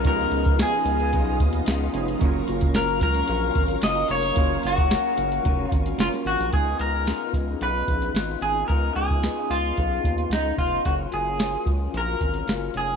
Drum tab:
HH |x-xxx-xxx-xxx-xx|x-xxx-xxx-xxx-xx|x-xxx-xxx-xxxxox|x-x-x-x-x-xxx-x-|
SD |----o-------o---|----o-------o---|----o-------oo--|----o-------o---|
BD |o--o----o-o-----|o--o--o---o-----|o--o----o-o-----|o-----o---o-----|

HH |x-x-x-x-x-xxx-x-|x-x-x-x-x-xxx-x-|
SD |----o-------o---|----o-------o---|
BD |o--o----o-o---o-|o-----o---o-----|